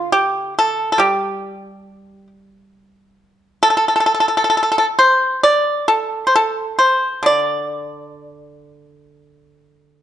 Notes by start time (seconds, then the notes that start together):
Already playing: D3
0.12 G4
0.59 A4
0.92 A4
0.98 G3 G4
3.63 A4
3.70 A4
3.77 A4
3.88 A4
3.96 A4
4.00 A4
4.06 A4
4.14 A4
4.20 A4
4.28 A4
4.37 A4
4.44 A4
4.50 A4
4.57 A4
4.63 A4
4.72 A4
4.78 A4
4.99 C5
5.43 D5
5.88 A4
6.27 C5
6.36 A4
6.79 C5
7.23 D3 D5